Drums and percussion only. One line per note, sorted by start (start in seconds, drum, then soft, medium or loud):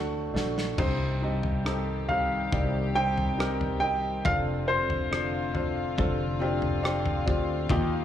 0.36 snare medium
0.58 snare medium
0.78 kick medium
0.78 floor tom medium
0.78 crash medium
1.43 floor tom medium
1.66 cross-stick medium
2.09 floor tom medium
2.52 kick medium
2.52 floor tom medium
3.18 floor tom medium
3.40 cross-stick loud
3.61 floor tom medium
4.25 kick loud
4.25 floor tom medium
4.90 floor tom medium
5.13 cross-stick loud
5.55 floor tom medium
5.98 kick medium
5.98 floor tom medium
6.62 floor tom medium
6.85 cross-stick loud
7.06 floor tom medium
7.28 kick medium
7.69 kick loud
7.69 floor tom loud